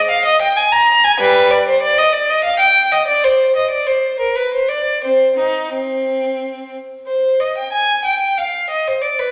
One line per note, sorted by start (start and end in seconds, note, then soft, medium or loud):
0.10 0.24 F5 loud
0.25 0.40 D#5 loud
0.42 0.56 G5 medium
0.56 0.72 G#5 loud
0.72 1.03 A#5 loud
1.04 1.19 G#5 loud
1.19 1.48 G3 medium
1.19 1.50 B4 loud
1.51 1.66 D5 medium
1.68 1.82 C5 medium
1.82 1.97 D5 loud
1.98 2.13 D#5 loud
2.13 2.29 D5 medium
2.29 2.45 D#5 medium
2.44 2.60 F5 loud
2.59 2.91 G5 loud
2.92 3.08 D#5 medium
3.07 3.23 D5 medium
3.24 3.55 C5 medium
3.56 3.71 D#5 medium
3.70 3.86 D5 medium
3.87 4.19 C5 medium
4.20 4.36 A#4 medium
4.36 4.52 B4 medium
4.54 4.70 C5 medium
4.68 5.03 D5 medium
5.04 5.36 C4 medium
5.04 5.37 C5 medium
5.38 5.72 D#4 medium
5.73 6.72 C4 medium
7.07 7.37 C5 medium
7.40 7.56 D#5 medium
7.58 7.73 G5 medium
7.72 8.04 G#5 medium
8.05 8.37 G5 medium
8.38 8.70 F5 medium
8.70 8.85 D#5 medium
8.88 9.03 C5 medium
9.02 9.18 D5 medium
9.19 9.32 B4 medium